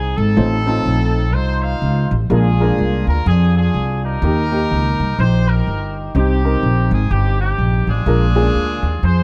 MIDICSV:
0, 0, Header, 1, 4, 480
1, 0, Start_track
1, 0, Tempo, 481155
1, 369, Time_signature, 4, 2, 24, 8
1, 9210, End_track
2, 0, Start_track
2, 0, Title_t, "Horn section"
2, 0, Program_c, 0, 61
2, 0, Note_on_c, 0, 60, 66
2, 0, Note_on_c, 0, 63, 68
2, 0, Note_on_c, 0, 68, 93
2, 143, Note_off_c, 0, 68, 0
2, 168, Note_on_c, 0, 69, 116
2, 172, Note_off_c, 0, 63, 0
2, 173, Note_off_c, 0, 60, 0
2, 184, Note_on_c, 0, 63, 80
2, 185, Note_on_c, 0, 60, 76
2, 1297, Note_off_c, 0, 63, 0
2, 1298, Note_off_c, 0, 60, 0
2, 1326, Note_on_c, 0, 72, 108
2, 1329, Note_off_c, 0, 69, 0
2, 1336, Note_on_c, 0, 65, 85
2, 1337, Note_on_c, 0, 63, 82
2, 1608, Note_off_c, 0, 72, 0
2, 1610, Note_on_c, 0, 77, 113
2, 1620, Note_on_c, 0, 72, 82
2, 2096, Note_off_c, 0, 77, 0
2, 2136, Note_off_c, 0, 63, 0
2, 2136, Note_off_c, 0, 65, 0
2, 2136, Note_off_c, 0, 72, 0
2, 2305, Note_on_c, 0, 65, 71
2, 2306, Note_on_c, 0, 62, 67
2, 2314, Note_on_c, 0, 68, 92
2, 3032, Note_off_c, 0, 68, 0
2, 3075, Note_on_c, 0, 70, 104
2, 3221, Note_off_c, 0, 62, 0
2, 3221, Note_off_c, 0, 65, 0
2, 3262, Note_off_c, 0, 70, 0
2, 3267, Note_on_c, 0, 62, 71
2, 3268, Note_on_c, 0, 65, 72
2, 3268, Note_on_c, 0, 68, 100
2, 3529, Note_off_c, 0, 68, 0
2, 3537, Note_off_c, 0, 65, 0
2, 3542, Note_off_c, 0, 62, 0
2, 3549, Note_on_c, 0, 65, 72
2, 3552, Note_on_c, 0, 68, 96
2, 3554, Note_on_c, 0, 62, 69
2, 3994, Note_off_c, 0, 68, 0
2, 4028, Note_on_c, 0, 67, 80
2, 4032, Note_on_c, 0, 63, 82
2, 4032, Note_on_c, 0, 70, 114
2, 4180, Note_off_c, 0, 65, 0
2, 4182, Note_off_c, 0, 62, 0
2, 5139, Note_off_c, 0, 67, 0
2, 5141, Note_off_c, 0, 63, 0
2, 5176, Note_on_c, 0, 72, 110
2, 5181, Note_off_c, 0, 70, 0
2, 5181, Note_on_c, 0, 63, 79
2, 5184, Note_on_c, 0, 67, 86
2, 5462, Note_off_c, 0, 63, 0
2, 5462, Note_off_c, 0, 67, 0
2, 5462, Note_off_c, 0, 72, 0
2, 5464, Note_on_c, 0, 70, 100
2, 5474, Note_on_c, 0, 63, 76
2, 5474, Note_on_c, 0, 67, 71
2, 5943, Note_off_c, 0, 70, 0
2, 6101, Note_off_c, 0, 63, 0
2, 6101, Note_off_c, 0, 67, 0
2, 6133, Note_on_c, 0, 67, 95
2, 6140, Note_on_c, 0, 63, 66
2, 6144, Note_on_c, 0, 60, 70
2, 6860, Note_off_c, 0, 67, 0
2, 6906, Note_on_c, 0, 68, 94
2, 7057, Note_off_c, 0, 63, 0
2, 7058, Note_off_c, 0, 60, 0
2, 7091, Note_on_c, 0, 67, 97
2, 7096, Note_on_c, 0, 60, 69
2, 7097, Note_off_c, 0, 68, 0
2, 7101, Note_on_c, 0, 63, 65
2, 7370, Note_off_c, 0, 67, 0
2, 7374, Note_off_c, 0, 63, 0
2, 7375, Note_off_c, 0, 60, 0
2, 7382, Note_on_c, 0, 67, 96
2, 7386, Note_on_c, 0, 63, 72
2, 7387, Note_on_c, 0, 60, 73
2, 7827, Note_off_c, 0, 67, 0
2, 7862, Note_on_c, 0, 65, 79
2, 7863, Note_on_c, 0, 68, 116
2, 7866, Note_on_c, 0, 62, 78
2, 8015, Note_off_c, 0, 63, 0
2, 8016, Note_off_c, 0, 60, 0
2, 8972, Note_off_c, 0, 65, 0
2, 8974, Note_off_c, 0, 62, 0
2, 9006, Note_off_c, 0, 68, 0
2, 9015, Note_on_c, 0, 65, 85
2, 9015, Note_on_c, 0, 72, 111
2, 9018, Note_on_c, 0, 68, 82
2, 9210, Note_off_c, 0, 65, 0
2, 9210, Note_off_c, 0, 68, 0
2, 9210, Note_off_c, 0, 72, 0
2, 9210, End_track
3, 0, Start_track
3, 0, Title_t, "Upright piano"
3, 0, Program_c, 1, 0
3, 363, Note_on_c, 1, 45, 60
3, 365, Note_on_c, 1, 57, 74
3, 366, Note_on_c, 1, 63, 67
3, 367, Note_on_c, 1, 60, 68
3, 367, Note_on_c, 1, 65, 68
3, 370, Note_on_c, 1, 72, 78
3, 534, Note_off_c, 1, 57, 0
3, 534, Note_off_c, 1, 63, 0
3, 534, Note_off_c, 1, 65, 0
3, 535, Note_off_c, 1, 60, 0
3, 536, Note_off_c, 1, 72, 0
3, 659, Note_on_c, 1, 57, 75
3, 662, Note_on_c, 1, 60, 71
3, 664, Note_on_c, 1, 63, 75
3, 666, Note_on_c, 1, 65, 68
3, 666, Note_on_c, 1, 69, 85
3, 1095, Note_off_c, 1, 45, 0
3, 1201, Note_off_c, 1, 57, 0
3, 1202, Note_off_c, 1, 60, 0
3, 1203, Note_off_c, 1, 63, 0
3, 1204, Note_off_c, 1, 65, 0
3, 1204, Note_off_c, 1, 69, 0
3, 2294, Note_on_c, 1, 58, 69
3, 2295, Note_on_c, 1, 56, 78
3, 2296, Note_on_c, 1, 46, 64
3, 2299, Note_on_c, 1, 62, 69
3, 2299, Note_on_c, 1, 65, 70
3, 2304, Note_on_c, 1, 70, 85
3, 2460, Note_off_c, 1, 58, 0
3, 2461, Note_off_c, 1, 56, 0
3, 2463, Note_off_c, 1, 62, 0
3, 2463, Note_off_c, 1, 65, 0
3, 2465, Note_off_c, 1, 70, 0
3, 2594, Note_on_c, 1, 56, 77
3, 2595, Note_on_c, 1, 58, 72
3, 2599, Note_on_c, 1, 65, 69
3, 2603, Note_on_c, 1, 62, 76
3, 2607, Note_on_c, 1, 70, 85
3, 3023, Note_off_c, 1, 46, 0
3, 3129, Note_off_c, 1, 56, 0
3, 3130, Note_off_c, 1, 58, 0
3, 3132, Note_off_c, 1, 65, 0
3, 3134, Note_off_c, 1, 62, 0
3, 3136, Note_off_c, 1, 70, 0
3, 4227, Note_on_c, 1, 51, 67
3, 4227, Note_on_c, 1, 63, 66
3, 4228, Note_on_c, 1, 58, 68
3, 4233, Note_on_c, 1, 67, 82
3, 4387, Note_off_c, 1, 63, 0
3, 4388, Note_off_c, 1, 58, 0
3, 4390, Note_off_c, 1, 67, 0
3, 4503, Note_on_c, 1, 58, 78
3, 4507, Note_on_c, 1, 63, 71
3, 4514, Note_on_c, 1, 67, 81
3, 4948, Note_off_c, 1, 51, 0
3, 5044, Note_off_c, 1, 58, 0
3, 5046, Note_off_c, 1, 63, 0
3, 5049, Note_off_c, 1, 67, 0
3, 6138, Note_on_c, 1, 60, 71
3, 6139, Note_on_c, 1, 63, 64
3, 6142, Note_on_c, 1, 48, 65
3, 6142, Note_on_c, 1, 67, 78
3, 6302, Note_off_c, 1, 60, 0
3, 6303, Note_off_c, 1, 63, 0
3, 6304, Note_off_c, 1, 67, 0
3, 6425, Note_on_c, 1, 60, 75
3, 6427, Note_on_c, 1, 63, 68
3, 6432, Note_on_c, 1, 70, 85
3, 6864, Note_off_c, 1, 48, 0
3, 6963, Note_off_c, 1, 60, 0
3, 6964, Note_off_c, 1, 63, 0
3, 6967, Note_off_c, 1, 70, 0
3, 8047, Note_on_c, 1, 46, 67
3, 8047, Note_on_c, 1, 56, 73
3, 8048, Note_on_c, 1, 62, 67
3, 8051, Note_on_c, 1, 58, 71
3, 8053, Note_on_c, 1, 65, 69
3, 8055, Note_on_c, 1, 70, 83
3, 8215, Note_off_c, 1, 56, 0
3, 8216, Note_off_c, 1, 62, 0
3, 8217, Note_off_c, 1, 58, 0
3, 8218, Note_off_c, 1, 65, 0
3, 8219, Note_off_c, 1, 70, 0
3, 8333, Note_on_c, 1, 56, 77
3, 8336, Note_on_c, 1, 58, 67
3, 8338, Note_on_c, 1, 61, 55
3, 8338, Note_on_c, 1, 65, 70
3, 8339, Note_on_c, 1, 68, 83
3, 8384, Note_off_c, 1, 61, 0
3, 8396, Note_on_c, 1, 62, 74
3, 8774, Note_off_c, 1, 46, 0
3, 8875, Note_off_c, 1, 56, 0
3, 8877, Note_off_c, 1, 58, 0
3, 8878, Note_off_c, 1, 65, 0
3, 8879, Note_off_c, 1, 68, 0
3, 8907, Note_off_c, 1, 62, 0
3, 9210, End_track
4, 0, Start_track
4, 0, Title_t, "Upright bass"
4, 0, Program_c, 2, 32
4, 0, Note_on_c, 2, 36, 80
4, 133, Note_off_c, 2, 36, 0
4, 175, Note_on_c, 2, 32, 95
4, 340, Note_off_c, 2, 32, 0
4, 368, Note_on_c, 2, 33, 101
4, 778, Note_off_c, 2, 33, 0
4, 856, Note_on_c, 2, 34, 92
4, 1335, Note_off_c, 2, 34, 0
4, 1335, Note_on_c, 2, 36, 102
4, 1743, Note_off_c, 2, 36, 0
4, 1813, Note_on_c, 2, 37, 91
4, 2057, Note_off_c, 2, 37, 0
4, 2106, Note_on_c, 2, 33, 101
4, 2269, Note_off_c, 2, 33, 0
4, 2293, Note_on_c, 2, 34, 106
4, 2702, Note_off_c, 2, 34, 0
4, 2776, Note_on_c, 2, 36, 92
4, 3019, Note_off_c, 2, 36, 0
4, 3062, Note_on_c, 2, 38, 91
4, 3227, Note_off_c, 2, 38, 0
4, 3253, Note_on_c, 2, 41, 113
4, 3662, Note_off_c, 2, 41, 0
4, 3733, Note_on_c, 2, 36, 94
4, 4142, Note_off_c, 2, 36, 0
4, 4208, Note_on_c, 2, 39, 106
4, 4620, Note_off_c, 2, 39, 0
4, 4701, Note_on_c, 2, 37, 89
4, 4942, Note_off_c, 2, 37, 0
4, 4986, Note_on_c, 2, 36, 85
4, 5149, Note_off_c, 2, 36, 0
4, 5173, Note_on_c, 2, 34, 95
4, 5582, Note_off_c, 2, 34, 0
4, 5658, Note_on_c, 2, 31, 83
4, 6065, Note_off_c, 2, 31, 0
4, 6133, Note_on_c, 2, 36, 105
4, 6542, Note_off_c, 2, 36, 0
4, 6614, Note_on_c, 2, 34, 92
4, 6858, Note_off_c, 2, 34, 0
4, 6895, Note_on_c, 2, 32, 102
4, 7062, Note_off_c, 2, 32, 0
4, 7090, Note_on_c, 2, 31, 100
4, 7499, Note_off_c, 2, 31, 0
4, 7565, Note_on_c, 2, 34, 88
4, 7811, Note_off_c, 2, 34, 0
4, 7853, Note_on_c, 2, 33, 93
4, 8020, Note_off_c, 2, 33, 0
4, 8042, Note_on_c, 2, 34, 106
4, 8453, Note_off_c, 2, 34, 0
4, 8527, Note_on_c, 2, 38, 85
4, 8772, Note_off_c, 2, 38, 0
4, 8804, Note_on_c, 2, 39, 92
4, 8974, Note_off_c, 2, 39, 0
4, 9007, Note_on_c, 2, 41, 96
4, 9210, Note_off_c, 2, 41, 0
4, 9210, End_track
0, 0, End_of_file